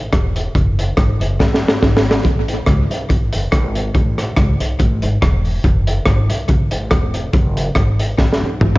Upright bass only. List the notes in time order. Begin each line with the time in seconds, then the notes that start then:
0.13 E1
0.55 F#1
0.98 G#1
1.20 F#1
1.40 A1
1.63 G#1
1.83 G#1
2.24 A1
2.67 C#2
2.90 B1
3.10 A1
3.34 F#1
3.52 G#1
3.94 A1
4.37 C#2
4.60 B1
4.80 A1
5.03 G#1
5.22 E1
5.64 F#1
6.06 G#1
6.29 B1
6.49 C#2
6.72 A1
6.91 E1
7.33 F#1
7.76 G#1
8.19 A1
8.41 B1
8.61 G#1